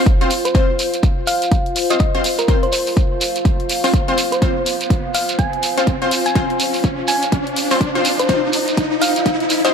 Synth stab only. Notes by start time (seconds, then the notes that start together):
0.21 C4 F4 C5
0.55 C4 F4 C5
1.90 C4 F4 C5
2.15 C4 F4 C5
2.48 C4 F4 C5
3.84 C4 F4 C5
4.08 C4 F4 C5
4.42 C4 F4 C5
5.77 C4 F4 C5
6.02 C4 F4 C5
6.36 C4 F4 C5
7.71 C4 F4 C5
7.95 C4 F4 C5
8.29 C4 F4 C5
9.65 C4 F4 C5